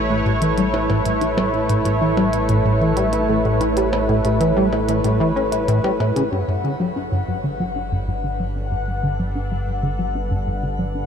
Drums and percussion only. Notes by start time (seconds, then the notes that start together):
0.42 closed hi-hat
0.58 closed hi-hat
0.74 percussion blips
0.90 percussion blips
1.05 closed hi-hat
1.21 closed hi-hat
1.38 percussion blips
1.69 closed hi-hat
1.85 closed hi-hat
2.17 percussion blips
2.33 closed hi-hat
2.49 closed hi-hat
2.97 closed hi-hat
3.13 closed hi-hat
3.61 closed hi-hat
3.77 closed hi-hat
3.93 percussion blips
4.25 closed hi-hat
4.41 closed hi-hat
4.73 percussion blips
4.89 closed hi-hat
5.04 closed hi-hat
5.52 closed hi-hat
5.68 closed hi-hat
5.84 percussion blips
6.00 percussion blips
6.16 closed hi-hat